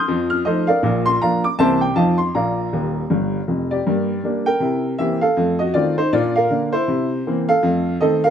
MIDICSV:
0, 0, Header, 1, 2, 480
1, 0, Start_track
1, 0, Key_signature, -2, "major"
1, 0, Tempo, 378072
1, 1061, Time_signature, 4, 2, 24, 8
1, 10539, End_track
2, 0, Start_track
2, 0, Title_t, "Upright piano"
2, 0, Program_c, 0, 0
2, 0, Note_on_c, 0, 84, 72
2, 0, Note_on_c, 0, 87, 68
2, 0, Note_on_c, 0, 91, 92
2, 105, Note_on_c, 0, 41, 84
2, 105, Note_on_c, 0, 53, 76
2, 324, Note_off_c, 0, 91, 0
2, 373, Note_off_c, 0, 84, 0
2, 376, Note_off_c, 0, 87, 0
2, 380, Note_on_c, 0, 89, 78
2, 511, Note_off_c, 0, 41, 0
2, 511, Note_off_c, 0, 53, 0
2, 546, Note_off_c, 0, 89, 0
2, 571, Note_on_c, 0, 75, 86
2, 577, Note_on_c, 0, 53, 44
2, 587, Note_on_c, 0, 57, 46
2, 590, Note_on_c, 0, 69, 61
2, 594, Note_on_c, 0, 72, 61
2, 597, Note_on_c, 0, 63, 53
2, 822, Note_off_c, 0, 75, 0
2, 842, Note_off_c, 0, 53, 0
2, 849, Note_off_c, 0, 57, 0
2, 853, Note_on_c, 0, 77, 82
2, 856, Note_off_c, 0, 69, 0
2, 857, Note_off_c, 0, 63, 0
2, 858, Note_off_c, 0, 72, 0
2, 867, Note_on_c, 0, 70, 58
2, 867, Note_on_c, 0, 74, 64
2, 1051, Note_on_c, 0, 46, 68
2, 1057, Note_on_c, 0, 34, 70
2, 1269, Note_off_c, 0, 77, 0
2, 1316, Note_off_c, 0, 70, 0
2, 1316, Note_off_c, 0, 74, 0
2, 1341, Note_on_c, 0, 84, 100
2, 1464, Note_off_c, 0, 46, 0
2, 1467, Note_off_c, 0, 34, 0
2, 1507, Note_off_c, 0, 84, 0
2, 1543, Note_on_c, 0, 82, 80
2, 1552, Note_on_c, 0, 53, 47
2, 1554, Note_on_c, 0, 58, 45
2, 1555, Note_on_c, 0, 74, 61
2, 1555, Note_on_c, 0, 77, 62
2, 1565, Note_on_c, 0, 62, 47
2, 1790, Note_off_c, 0, 82, 0
2, 1813, Note_off_c, 0, 53, 0
2, 1815, Note_off_c, 0, 58, 0
2, 1819, Note_off_c, 0, 74, 0
2, 1819, Note_off_c, 0, 77, 0
2, 1823, Note_off_c, 0, 62, 0
2, 1832, Note_on_c, 0, 86, 84
2, 1993, Note_off_c, 0, 86, 0
2, 2015, Note_on_c, 0, 48, 68
2, 2015, Note_on_c, 0, 81, 103
2, 2023, Note_on_c, 0, 76, 77
2, 2025, Note_on_c, 0, 36, 68
2, 2027, Note_on_c, 0, 52, 48
2, 2028, Note_on_c, 0, 58, 44
2, 2029, Note_on_c, 0, 72, 77
2, 2036, Note_on_c, 0, 60, 44
2, 2265, Note_off_c, 0, 81, 0
2, 2290, Note_off_c, 0, 52, 0
2, 2290, Note_off_c, 0, 58, 0
2, 2293, Note_off_c, 0, 76, 0
2, 2296, Note_off_c, 0, 72, 0
2, 2297, Note_off_c, 0, 60, 0
2, 2299, Note_on_c, 0, 79, 76
2, 2426, Note_off_c, 0, 48, 0
2, 2432, Note_off_c, 0, 36, 0
2, 2466, Note_off_c, 0, 79, 0
2, 2482, Note_on_c, 0, 41, 68
2, 2485, Note_on_c, 0, 81, 82
2, 2486, Note_on_c, 0, 53, 64
2, 2493, Note_on_c, 0, 77, 56
2, 2495, Note_on_c, 0, 60, 41
2, 2506, Note_on_c, 0, 75, 60
2, 2512, Note_on_c, 0, 63, 34
2, 2740, Note_off_c, 0, 81, 0
2, 2757, Note_off_c, 0, 53, 0
2, 2761, Note_off_c, 0, 60, 0
2, 2765, Note_on_c, 0, 84, 75
2, 2768, Note_off_c, 0, 77, 0
2, 2774, Note_off_c, 0, 63, 0
2, 2774, Note_off_c, 0, 75, 0
2, 2899, Note_off_c, 0, 41, 0
2, 2938, Note_off_c, 0, 84, 0
2, 2979, Note_on_c, 0, 82, 66
2, 2981, Note_on_c, 0, 34, 54
2, 2983, Note_on_c, 0, 46, 60
2, 2988, Note_on_c, 0, 74, 49
2, 2992, Note_on_c, 0, 77, 56
2, 3390, Note_off_c, 0, 34, 0
2, 3391, Note_off_c, 0, 46, 0
2, 3464, Note_on_c, 0, 39, 60
2, 3466, Note_on_c, 0, 27, 54
2, 3824, Note_off_c, 0, 39, 0
2, 3825, Note_off_c, 0, 27, 0
2, 3938, Note_on_c, 0, 43, 60
2, 3945, Note_on_c, 0, 31, 57
2, 4205, Note_off_c, 0, 82, 0
2, 4300, Note_off_c, 0, 43, 0
2, 4305, Note_off_c, 0, 31, 0
2, 4376, Note_off_c, 0, 74, 0
2, 4378, Note_off_c, 0, 77, 0
2, 4418, Note_on_c, 0, 41, 50
2, 4420, Note_on_c, 0, 29, 50
2, 4710, Note_on_c, 0, 74, 69
2, 4730, Note_on_c, 0, 67, 54
2, 4780, Note_off_c, 0, 41, 0
2, 4782, Note_off_c, 0, 29, 0
2, 4910, Note_on_c, 0, 43, 68
2, 4925, Note_on_c, 0, 58, 48
2, 5183, Note_off_c, 0, 58, 0
2, 5316, Note_off_c, 0, 43, 0
2, 5378, Note_on_c, 0, 55, 42
2, 5388, Note_on_c, 0, 58, 47
2, 5393, Note_on_c, 0, 62, 49
2, 5528, Note_off_c, 0, 74, 0
2, 5632, Note_off_c, 0, 67, 0
2, 5644, Note_off_c, 0, 55, 0
2, 5651, Note_off_c, 0, 58, 0
2, 5655, Note_off_c, 0, 62, 0
2, 5664, Note_on_c, 0, 79, 88
2, 5672, Note_on_c, 0, 70, 64
2, 5842, Note_on_c, 0, 48, 68
2, 5868, Note_on_c, 0, 64, 50
2, 6131, Note_off_c, 0, 64, 0
2, 6238, Note_off_c, 0, 79, 0
2, 6260, Note_off_c, 0, 48, 0
2, 6296, Note_off_c, 0, 70, 0
2, 6329, Note_on_c, 0, 76, 85
2, 6331, Note_on_c, 0, 52, 44
2, 6343, Note_on_c, 0, 58, 42
2, 6343, Note_on_c, 0, 60, 41
2, 6343, Note_on_c, 0, 67, 64
2, 6582, Note_off_c, 0, 76, 0
2, 6598, Note_off_c, 0, 52, 0
2, 6608, Note_off_c, 0, 58, 0
2, 6608, Note_off_c, 0, 60, 0
2, 6614, Note_off_c, 0, 67, 0
2, 6619, Note_on_c, 0, 77, 81
2, 6634, Note_on_c, 0, 69, 69
2, 6817, Note_on_c, 0, 41, 72
2, 6840, Note_on_c, 0, 57, 47
2, 7034, Note_off_c, 0, 77, 0
2, 7081, Note_off_c, 0, 69, 0
2, 7097, Note_on_c, 0, 75, 82
2, 7099, Note_off_c, 0, 57, 0
2, 7116, Note_on_c, 0, 66, 61
2, 7228, Note_off_c, 0, 41, 0
2, 7266, Note_off_c, 0, 75, 0
2, 7285, Note_on_c, 0, 74, 91
2, 7289, Note_on_c, 0, 51, 45
2, 7290, Note_on_c, 0, 60, 51
2, 7292, Note_off_c, 0, 66, 0
2, 7295, Note_on_c, 0, 57, 41
2, 7295, Note_on_c, 0, 65, 65
2, 7540, Note_off_c, 0, 74, 0
2, 7557, Note_off_c, 0, 51, 0
2, 7558, Note_off_c, 0, 60, 0
2, 7561, Note_off_c, 0, 57, 0
2, 7569, Note_off_c, 0, 65, 0
2, 7590, Note_on_c, 0, 72, 85
2, 7591, Note_on_c, 0, 63, 61
2, 7753, Note_off_c, 0, 72, 0
2, 7769, Note_off_c, 0, 63, 0
2, 7780, Note_on_c, 0, 46, 75
2, 7780, Note_on_c, 0, 74, 93
2, 7793, Note_on_c, 0, 65, 79
2, 7807, Note_on_c, 0, 62, 48
2, 8028, Note_off_c, 0, 74, 0
2, 8059, Note_off_c, 0, 65, 0
2, 8065, Note_off_c, 0, 62, 0
2, 8070, Note_on_c, 0, 77, 86
2, 8085, Note_on_c, 0, 70, 72
2, 8190, Note_off_c, 0, 46, 0
2, 8254, Note_on_c, 0, 50, 43
2, 8254, Note_on_c, 0, 58, 45
2, 8266, Note_on_c, 0, 62, 46
2, 8480, Note_off_c, 0, 77, 0
2, 8520, Note_off_c, 0, 58, 0
2, 8521, Note_off_c, 0, 50, 0
2, 8526, Note_off_c, 0, 70, 0
2, 8529, Note_off_c, 0, 62, 0
2, 8538, Note_on_c, 0, 72, 87
2, 8559, Note_on_c, 0, 64, 70
2, 8733, Note_on_c, 0, 48, 68
2, 8740, Note_off_c, 0, 64, 0
2, 8759, Note_on_c, 0, 64, 46
2, 9019, Note_off_c, 0, 64, 0
2, 9145, Note_off_c, 0, 48, 0
2, 9230, Note_on_c, 0, 52, 47
2, 9232, Note_on_c, 0, 60, 51
2, 9237, Note_on_c, 0, 58, 46
2, 9360, Note_off_c, 0, 72, 0
2, 9492, Note_off_c, 0, 52, 0
2, 9493, Note_off_c, 0, 60, 0
2, 9497, Note_off_c, 0, 58, 0
2, 9505, Note_on_c, 0, 77, 98
2, 9513, Note_on_c, 0, 69, 71
2, 9686, Note_on_c, 0, 41, 88
2, 9711, Note_on_c, 0, 57, 49
2, 9973, Note_off_c, 0, 57, 0
2, 10077, Note_off_c, 0, 77, 0
2, 10101, Note_off_c, 0, 41, 0
2, 10135, Note_off_c, 0, 69, 0
2, 10165, Note_on_c, 0, 75, 88
2, 10171, Note_on_c, 0, 51, 45
2, 10177, Note_on_c, 0, 57, 51
2, 10179, Note_on_c, 0, 69, 75
2, 10181, Note_on_c, 0, 60, 51
2, 10419, Note_off_c, 0, 75, 0
2, 10438, Note_off_c, 0, 51, 0
2, 10442, Note_off_c, 0, 57, 0
2, 10445, Note_off_c, 0, 60, 0
2, 10450, Note_off_c, 0, 69, 0
2, 10460, Note_on_c, 0, 77, 96
2, 10481, Note_on_c, 0, 70, 73
2, 10539, Note_off_c, 0, 70, 0
2, 10539, Note_off_c, 0, 77, 0
2, 10539, End_track
0, 0, End_of_file